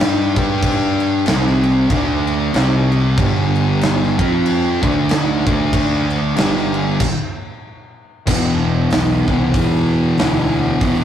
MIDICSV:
0, 0, Header, 1, 4, 480
1, 0, Start_track
1, 0, Tempo, 636267
1, 480, Time_signature, 4, 2, 24, 8
1, 8329, End_track
2, 0, Start_track
2, 0, Title_t, "Distorted electric guitar"
2, 0, Program_c, 0, 30
2, 0, Note_on_c, 0, 55, 92
2, 0, Note_on_c, 0, 62, 106
2, 0, Note_on_c, 0, 67, 115
2, 271, Note_off_c, 0, 55, 0
2, 272, Note_off_c, 0, 62, 0
2, 274, Note_off_c, 0, 67, 0
2, 279, Note_on_c, 0, 55, 95
2, 282, Note_on_c, 0, 62, 103
2, 286, Note_on_c, 0, 67, 99
2, 950, Note_off_c, 0, 55, 0
2, 951, Note_on_c, 0, 48, 92
2, 955, Note_off_c, 0, 62, 0
2, 956, Note_off_c, 0, 67, 0
2, 959, Note_on_c, 0, 55, 92
2, 960, Note_on_c, 0, 60, 104
2, 1430, Note_off_c, 0, 48, 0
2, 1433, Note_off_c, 0, 55, 0
2, 1434, Note_off_c, 0, 60, 0
2, 1435, Note_on_c, 0, 50, 102
2, 1436, Note_on_c, 0, 57, 97
2, 1440, Note_on_c, 0, 62, 107
2, 1911, Note_off_c, 0, 50, 0
2, 1913, Note_off_c, 0, 57, 0
2, 1914, Note_on_c, 0, 48, 96
2, 1915, Note_off_c, 0, 62, 0
2, 1920, Note_on_c, 0, 55, 103
2, 1926, Note_on_c, 0, 60, 120
2, 2392, Note_off_c, 0, 48, 0
2, 2395, Note_off_c, 0, 55, 0
2, 2398, Note_off_c, 0, 60, 0
2, 2401, Note_on_c, 0, 43, 95
2, 2405, Note_on_c, 0, 50, 107
2, 2406, Note_on_c, 0, 55, 115
2, 3155, Note_off_c, 0, 43, 0
2, 3157, Note_off_c, 0, 50, 0
2, 3158, Note_off_c, 0, 55, 0
2, 3164, Note_on_c, 0, 53, 95
2, 3170, Note_on_c, 0, 60, 98
2, 3173, Note_on_c, 0, 65, 108
2, 3636, Note_off_c, 0, 53, 0
2, 3639, Note_off_c, 0, 60, 0
2, 3640, Note_off_c, 0, 65, 0
2, 3644, Note_on_c, 0, 50, 92
2, 3649, Note_on_c, 0, 57, 88
2, 3657, Note_on_c, 0, 62, 102
2, 4109, Note_off_c, 0, 50, 0
2, 4115, Note_off_c, 0, 57, 0
2, 4116, Note_off_c, 0, 62, 0
2, 4118, Note_on_c, 0, 50, 94
2, 4124, Note_on_c, 0, 57, 103
2, 4125, Note_on_c, 0, 62, 118
2, 4790, Note_off_c, 0, 50, 0
2, 4796, Note_off_c, 0, 57, 0
2, 4797, Note_off_c, 0, 62, 0
2, 4799, Note_on_c, 0, 50, 108
2, 4801, Note_on_c, 0, 43, 99
2, 4806, Note_on_c, 0, 55, 103
2, 5275, Note_off_c, 0, 50, 0
2, 5276, Note_off_c, 0, 43, 0
2, 5278, Note_off_c, 0, 55, 0
2, 6235, Note_on_c, 0, 40, 90
2, 6245, Note_on_c, 0, 47, 106
2, 6257, Note_on_c, 0, 52, 96
2, 6988, Note_off_c, 0, 47, 0
2, 7004, Note_off_c, 0, 52, 0
2, 7007, Note_on_c, 0, 52, 85
2, 7016, Note_on_c, 0, 47, 77
2, 7025, Note_off_c, 0, 40, 0
2, 7028, Note_on_c, 0, 40, 72
2, 7665, Note_off_c, 0, 40, 0
2, 7671, Note_off_c, 0, 52, 0
2, 7674, Note_on_c, 0, 40, 80
2, 7676, Note_off_c, 0, 47, 0
2, 7687, Note_on_c, 0, 47, 78
2, 7695, Note_on_c, 0, 52, 97
2, 8146, Note_off_c, 0, 40, 0
2, 8153, Note_off_c, 0, 47, 0
2, 8156, Note_off_c, 0, 52, 0
2, 8160, Note_on_c, 0, 40, 99
2, 8168, Note_on_c, 0, 47, 100
2, 8179, Note_on_c, 0, 52, 98
2, 8329, Note_off_c, 0, 40, 0
2, 8329, Note_off_c, 0, 47, 0
2, 8329, Note_off_c, 0, 52, 0
2, 8329, End_track
3, 0, Start_track
3, 0, Title_t, "Fingered electric bass"
3, 0, Program_c, 1, 33
3, 0, Note_on_c, 1, 43, 96
3, 248, Note_off_c, 1, 43, 0
3, 274, Note_on_c, 1, 43, 100
3, 927, Note_off_c, 1, 43, 0
3, 959, Note_on_c, 1, 36, 95
3, 1410, Note_off_c, 1, 36, 0
3, 1433, Note_on_c, 1, 38, 100
3, 1887, Note_off_c, 1, 38, 0
3, 1923, Note_on_c, 1, 36, 99
3, 2372, Note_off_c, 1, 36, 0
3, 2395, Note_on_c, 1, 31, 110
3, 3130, Note_off_c, 1, 31, 0
3, 3160, Note_on_c, 1, 41, 102
3, 3612, Note_off_c, 1, 41, 0
3, 3642, Note_on_c, 1, 38, 100
3, 4093, Note_off_c, 1, 38, 0
3, 4123, Note_on_c, 1, 38, 98
3, 4772, Note_off_c, 1, 38, 0
3, 4799, Note_on_c, 1, 31, 95
3, 5250, Note_off_c, 1, 31, 0
3, 6239, Note_on_c, 1, 28, 111
3, 6671, Note_off_c, 1, 28, 0
3, 6720, Note_on_c, 1, 35, 91
3, 6973, Note_off_c, 1, 35, 0
3, 6999, Note_on_c, 1, 36, 95
3, 7179, Note_off_c, 1, 36, 0
3, 7196, Note_on_c, 1, 40, 97
3, 7629, Note_off_c, 1, 40, 0
3, 7680, Note_on_c, 1, 38, 103
3, 8111, Note_off_c, 1, 38, 0
3, 8155, Note_on_c, 1, 28, 109
3, 8329, Note_off_c, 1, 28, 0
3, 8329, End_track
4, 0, Start_track
4, 0, Title_t, "Drums"
4, 10, Note_on_c, 9, 38, 124
4, 85, Note_off_c, 9, 38, 0
4, 273, Note_on_c, 9, 49, 76
4, 275, Note_on_c, 9, 36, 113
4, 349, Note_off_c, 9, 49, 0
4, 351, Note_off_c, 9, 36, 0
4, 472, Note_on_c, 9, 36, 107
4, 472, Note_on_c, 9, 49, 96
4, 548, Note_off_c, 9, 36, 0
4, 548, Note_off_c, 9, 49, 0
4, 754, Note_on_c, 9, 49, 65
4, 829, Note_off_c, 9, 49, 0
4, 949, Note_on_c, 9, 49, 92
4, 965, Note_on_c, 9, 38, 124
4, 1024, Note_off_c, 9, 49, 0
4, 1041, Note_off_c, 9, 38, 0
4, 1108, Note_on_c, 9, 38, 34
4, 1184, Note_off_c, 9, 38, 0
4, 1233, Note_on_c, 9, 49, 65
4, 1309, Note_off_c, 9, 49, 0
4, 1433, Note_on_c, 9, 49, 83
4, 1434, Note_on_c, 9, 36, 109
4, 1509, Note_off_c, 9, 49, 0
4, 1510, Note_off_c, 9, 36, 0
4, 1714, Note_on_c, 9, 49, 63
4, 1790, Note_off_c, 9, 49, 0
4, 1916, Note_on_c, 9, 49, 86
4, 1933, Note_on_c, 9, 38, 115
4, 1992, Note_off_c, 9, 49, 0
4, 2008, Note_off_c, 9, 38, 0
4, 2202, Note_on_c, 9, 49, 64
4, 2277, Note_off_c, 9, 49, 0
4, 2397, Note_on_c, 9, 36, 121
4, 2398, Note_on_c, 9, 49, 84
4, 2472, Note_off_c, 9, 36, 0
4, 2474, Note_off_c, 9, 49, 0
4, 2681, Note_on_c, 9, 49, 60
4, 2756, Note_off_c, 9, 49, 0
4, 2877, Note_on_c, 9, 49, 89
4, 2894, Note_on_c, 9, 38, 122
4, 2953, Note_off_c, 9, 49, 0
4, 2969, Note_off_c, 9, 38, 0
4, 3041, Note_on_c, 9, 38, 34
4, 3117, Note_off_c, 9, 38, 0
4, 3162, Note_on_c, 9, 36, 109
4, 3166, Note_on_c, 9, 49, 62
4, 3237, Note_off_c, 9, 36, 0
4, 3242, Note_off_c, 9, 49, 0
4, 3362, Note_on_c, 9, 49, 81
4, 3438, Note_off_c, 9, 49, 0
4, 3642, Note_on_c, 9, 36, 119
4, 3645, Note_on_c, 9, 49, 70
4, 3718, Note_off_c, 9, 36, 0
4, 3721, Note_off_c, 9, 49, 0
4, 3841, Note_on_c, 9, 49, 90
4, 3857, Note_on_c, 9, 38, 122
4, 3916, Note_off_c, 9, 49, 0
4, 3933, Note_off_c, 9, 38, 0
4, 4124, Note_on_c, 9, 36, 114
4, 4125, Note_on_c, 9, 49, 69
4, 4199, Note_off_c, 9, 36, 0
4, 4201, Note_off_c, 9, 49, 0
4, 4322, Note_on_c, 9, 36, 115
4, 4327, Note_on_c, 9, 49, 98
4, 4398, Note_off_c, 9, 36, 0
4, 4402, Note_off_c, 9, 49, 0
4, 4604, Note_on_c, 9, 49, 65
4, 4679, Note_off_c, 9, 49, 0
4, 4801, Note_on_c, 9, 49, 93
4, 4818, Note_on_c, 9, 38, 125
4, 4877, Note_off_c, 9, 49, 0
4, 4893, Note_off_c, 9, 38, 0
4, 4961, Note_on_c, 9, 38, 31
4, 5036, Note_off_c, 9, 38, 0
4, 5083, Note_on_c, 9, 49, 68
4, 5159, Note_off_c, 9, 49, 0
4, 5280, Note_on_c, 9, 57, 104
4, 5281, Note_on_c, 9, 36, 120
4, 5356, Note_off_c, 9, 57, 0
4, 5357, Note_off_c, 9, 36, 0
4, 6239, Note_on_c, 9, 36, 120
4, 6241, Note_on_c, 9, 57, 126
4, 6315, Note_off_c, 9, 36, 0
4, 6317, Note_off_c, 9, 57, 0
4, 6718, Note_on_c, 9, 46, 66
4, 6734, Note_on_c, 9, 38, 125
4, 6793, Note_off_c, 9, 46, 0
4, 6810, Note_off_c, 9, 38, 0
4, 6999, Note_on_c, 9, 36, 92
4, 7075, Note_off_c, 9, 36, 0
4, 7198, Note_on_c, 9, 36, 115
4, 7199, Note_on_c, 9, 46, 61
4, 7273, Note_off_c, 9, 36, 0
4, 7275, Note_off_c, 9, 46, 0
4, 7676, Note_on_c, 9, 46, 70
4, 7693, Note_on_c, 9, 38, 120
4, 7751, Note_off_c, 9, 46, 0
4, 7768, Note_off_c, 9, 38, 0
4, 8157, Note_on_c, 9, 36, 121
4, 8157, Note_on_c, 9, 46, 71
4, 8232, Note_off_c, 9, 36, 0
4, 8233, Note_off_c, 9, 46, 0
4, 8329, End_track
0, 0, End_of_file